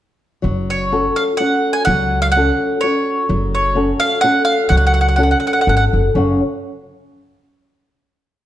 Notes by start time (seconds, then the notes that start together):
0.42 F#1 F#3
0.70 C#5
0.92 C#4 F#4 A4
1.16 F5
1.37 C#4 F#4 F#5
1.41 A4
1.73 G#5
1.85 C#2 F#5
1.89 F#3
2.22 F5
2.32 F#5
2.36 C#4 F#4 A4
2.81 C#4 F#4 A4 C#5
3.29 F#1 F#3
3.55 C#5
3.75 C#4 F#4 A4
4.00 F5
4.21 C#4 F#4 A4 F#5
4.45 F5
4.69 C#2 F#3 F#5
4.77 F#5
4.87 F#5
4.94 F#5
5.01 F#5
5.08 F#5
5.16 C#4 F#4 A4 F#5
5.23 F#5
5.31 F#5
5.40 F#5
5.47 F#5
5.53 F#5
5.61 F#5
5.67 G#1 C#4 F#4 A4 F#5
5.77 F#5
5.93 F#1
6.15 F#1 F#2 C#3 C#4 F#4 A4 F#5